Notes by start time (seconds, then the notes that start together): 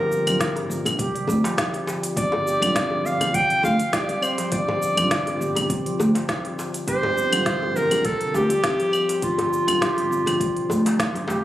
Already playing: G1 A#4
0.11 G3, shaker
0.25 G2 D3 G3 C4, open hi-hat, claves, shaker
0.29 F4
0.40 kick, snare, open hi-hat, shaker
0.56 open hi-hat, djembe tone
0.69 G1, shaker
0.85 G1, open hi-hat, djembe tone, claves, shaker
0.99 C2 G4, kick, open hi-hat, shaker
1.14 G3, open hi-hat
1.27 D2 C4, djembe tone, djembe bass, shaker
1.44 F3, open hi-hat, djembe slap, shaker
1.57 G3, kick, snare, open hi-hat, shaker
1.74 open hi-hat, djembe slap
1.87 djembe slap, shaker
2.03 open hi-hat, shaker
2.15 G1 C4 C5 D5, kick, open hi-hat, shaker
2.32 djembe slap, djembe bass
2.46 G4, shaker
2.60 G2 D3 G3 C4 F4, open hi-hat, claves, shaker
2.75 C4, kick, snare, open hi-hat, shaker
2.90 F3, djembe tone
3.04 G1 G3 F5, shaker
3.21 G1, open hi-hat, djembe tone, claves, shaker
3.34 C2 G5, kick, open hi-hat, shaker
3.50 open hi-hat
3.62 D2 D3 G3 C4 F4 F5, djembe slap, djembe tone, shaker
3.80 open hi-hat, shaker
3.93 G4 D5, kick, snare, open hi-hat, shaker
4.09 G3, open hi-hat, djembe tone
4.22 C4 C5, claves, shaker
4.38 F3, open hi-hat, djembe slap, shaker
4.52 G1 G3 D5, kick, open hi-hat, shaker
4.68 djembe slap, djembe bass
4.82 shaker
4.95 G2 D3 G3 C4, open hi-hat, claves, shaker
4.99 F4
5.11 kick, snare, open hi-hat, shaker
5.27 open hi-hat, djembe tone
5.40 G1 G4, shaker
5.55 G1 G3, open hi-hat, djembe tone, claves, shaker
5.69 C2 C4, kick, open hi-hat, shaker
5.86 F3, open hi-hat
5.99 D2 G3, djembe tone, djembe bass, shaker
6.15 open hi-hat, djembe slap, shaker
6.29 kick, snare, open hi-hat, shaker
6.45 open hi-hat, djembe slap
6.59 djembe slap, shaker
6.74 open hi-hat, shaker
6.87 G1 G4 C5, kick, open hi-hat, shaker
7.03 G3, djembe slap, djembe bass
7.17 C4, shaker
7.30 G2 D3 F3 G3 C4 F4, open hi-hat, claves, shaker
7.46 G3, kick, snare, open hi-hat, shaker
7.63 djembe tone
7.76 G1 A#4, shaker
7.91 G1, open hi-hat, djembe tone, claves, shaker
8.05 C2 A4, kick, open hi-hat, shaker
8.21 open hi-hat
8.33 D2 D3 G3 C4 F4 G4, djembe slap, djembe tone, shaker
8.49 G3, open hi-hat, shaker
8.63 C4, kick, snare, open hi-hat, shaker
8.79 F3, open hi-hat, djembe tone
8.93 G3, claves, shaker
9.09 open hi-hat, djembe slap, shaker
9.22 G1 F4, kick, open hi-hat, shaker
9.38 open hi-hat, djembe slap, djembe bass
9.53 shaker
9.66 G2 D3 G3 C4 F4, open hi-hat, claves, shaker
9.81 G4, kick, snare, open hi-hat, shaker
9.96 G3, open hi-hat, djembe tone
10.11 G1 C4, shaker
10.26 G1 F3, open hi-hat, djembe tone, claves, shaker
10.40 C2 G3, kick, open hi-hat, shaker
10.57 open hi-hat
10.70 D2, djembe tone, djembe bass, shaker
10.86 open hi-hat, djembe slap, shaker
10.99 kick, snare, open hi-hat, shaker
11.15 G2, open hi-hat, djembe slap
11.28 F1 G4, djembe slap, shaker